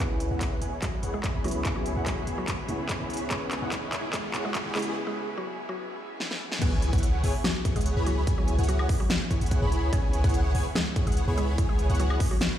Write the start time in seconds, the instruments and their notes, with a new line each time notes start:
Already playing: felt piano C#3
0.00 808-style bass C#2, felt piano G#3 B3 E4, synth pluck B3 B4, analog polysynth B3 E4 G#4 C#5 G#5, string section G#4 C#5 E5 B5, riser
0.20 closed hi-hat
0.31 808-style bass C#2, analog polysynth B3 E4 G#4 C#5 F#5
0.41 kick, clap, closed hi-hat
0.62 808-style bass C#2, analog polysynth B3 E4 G#4 C#5 G#5, closed hi-hat
0.82 synth pluck F#3 F#4, kick, clap, closed hi-hat
1.03 808-style bass C#2, analog polysynth B3 E4 G#4 C#5 F#5, closed hi-hat
1.14 synth pluck G#3 G#4
1.24 kick, clap, closed hi-hat
1.34 808-style bass C#2, analog polysynth B3 E4 G#4 C#5 B5
1.43 felt piano C#3 G#3 B3 E4, synth pluck F#3 F#4, closed hi-hat
1.48 closed hi-hat
1.51 closed hi-hat
1.63 808-style bass C#2, felt piano C#3 G#3 B3 E4, analog polysynth B3 E4 G#4 C#5 G#5, kick, clap, closed hi-hat
1.76 synth pluck F#3 F#4
1.86 closed hi-hat
1.96 808-style bass C#2, analog polysynth B3 E4 G#4 C#5 F#5
2.06 synth pluck F#3 F#4, kick, clap, closed hi-hat
2.27 808-style bass C#2, analog polysynth B3 E4 G#4 C#5 G#5, closed hi-hat
2.38 synth pluck F#3 F#4
2.48 kick, clap, closed hi-hat
2.68 808-style bass C#2, felt piano C#3 G#3 B3 E4, analog polysynth B3 E4 G#4 C#5 F#5, closed hi-hat
2.89 kick, clap, closed hi-hat
3.00 808-style bass C#2, analog polysynth B3 E4 G#4 C#5 B5
3.10 closed hi-hat
3.14 closed hi-hat
3.17 closed hi-hat
3.29 808-style bass C#2, felt piano C#3 G#3 B3, analog polysynth B3 E4 G#4 C#5 G#5, synth pluck C#4 C#5, kick, clap, closed hi-hat
3.33 felt piano E4
3.51 clap, closed hi-hat
3.62 808-style bass C#2, analog polysynth B3 E4 G#4 C#5 F#5
3.72 kick, clap, closed hi-hat
3.93 808-style bass C#2, analog polysynth B3 E4 G#4 C#5 G#5, clap, closed hi-hat
4.13 synth pluck G#3 G#4, kick, clap, closed hi-hat
4.34 808-style bass C#2, analog polysynth B3 E4 G#4 C#5 F#5, clap, closed hi-hat
4.45 synth pluck G#3 G#4
4.55 kick, clap, closed hi-hat
4.65 808-style bass C#2, analog polysynth B3 E4 G#4 C#5 B5
4.74 felt piano C#3 G#3 B3 E4, synth pluck G#3 G#4, clap, closed hi-hat
4.79 closed hi-hat
4.82 closed hi-hat
5.07 synth pluck G#3 G#4
5.38 synth pluck F#3 F#4
5.69 synth pluck F#3 F#4
6.20 snare
6.31 snare
6.52 snare
6.62 808-style bass C#2, analog polysynth B3 E4 G#4 C#5 G#5, synth pluck B3 B4, kick, closed hi-hat, crash, impact
6.82 closed hi-hat
6.93 808-style bass C#2, analog polysynth B3 E4 G#4 C#5 F#5, kick, closed hi-hat
6.98 closed hi-hat
7.03 closed hi-hat
7.24 808-style bass C#2, analog polysynth B3 E4 G#4 C#5 G#5, open hi-hat
7.44 synth pluck F#3 F#4, snare, closed hi-hat
7.65 808-style bass C#2, analog polysynth B3 E4 G#4 C#5 C#6, kick, closed hi-hat
7.76 808-style bass C#2, synth pluck G#3 G#4, analog polysynth B3 E4 G#4 C#5 F#5, closed hi-hat
7.81 closed hi-hat
7.86 closed hi-hat
7.96 808-style bass C#2, analog polysynth B3 E4 G#4 C#5 B5
8.06 synth pluck F#3 F#4, closed hi-hat
8.27 808-style bass C#2, analog polysynth B3 E4 G#4 C#5 G#5, kick, closed hi-hat
8.38 synth pluck F#3 F#4
8.48 closed hi-hat
8.59 808-style bass C#2, analog polysynth B3 E4 G#4 C#5 F#5, closed hi-hat
8.64 closed hi-hat
8.69 synth pluck F#3 F#4, closed hi-hat
8.79 high woodblock
8.89 808-style bass C#2, analog polysynth B3 E4 G#4 C#5 G#5, kick, open hi-hat
9.00 synth pluck F#3 F#4
9.10 snare, closed hi-hat
9.31 808-style bass C#2, analog polysynth B3 E4 G#4 C#5 C#6, kick, closed hi-hat
9.41 808-style bass C#2, analog polysynth B3 E4 G#4 C#5 F#5, closed hi-hat
9.46 closed hi-hat
9.51 kick, closed hi-hat
9.62 808-style bass C#2, analog polysynth B3 E4 G#4 C#5 B5
9.72 closed hi-hat
9.93 808-style bass C#2, analog polysynth B3 E4 G#4 C#5 G#5, synth pluck C#4 C#5, kick, closed hi-hat
10.13 closed hi-hat
10.24 808-style bass C#2, analog polysynth B3 E4 G#4 C#5 F#5, kick, closed hi-hat
10.29 closed hi-hat
10.34 closed hi-hat
10.55 808-style bass C#2, analog polysynth B3 E4 G#4 C#5 G#5, open hi-hat
10.75 synth pluck G#3 G#4, snare, closed hi-hat
10.96 808-style bass C#2, analog polysynth B3 E4 G#4 C#5 C#6, kick, closed hi-hat
11.07 808-style bass C#2, synth pluck G#3 G#4, analog polysynth B3 E4 G#4 C#5 F#5, closed hi-hat
11.12 closed hi-hat
11.17 closed hi-hat
11.28 808-style bass C#2, analog polysynth B3 E4 G#4 C#5 B5
11.38 synth pluck G#3 G#4, closed hi-hat
11.58 808-style bass C#2, analog polysynth B3 E4 G#4 C#5 G#5, kick, closed hi-hat
11.69 synth pluck G#3 G#4
11.79 closed hi-hat
11.90 808-style bass C#2, analog polysynth B3 E4 G#4 C#5 F#5, closed hi-hat
11.95 closed hi-hat
12.00 synth pluck F#3 F#4, closed hi-hat
12.10 high woodblock
12.20 808-style bass C#2, analog polysynth B3 E4 G#4 C#5 G#5, kick, open hi-hat
12.31 synth pluck F#3 F#4
12.41 snare, closed hi-hat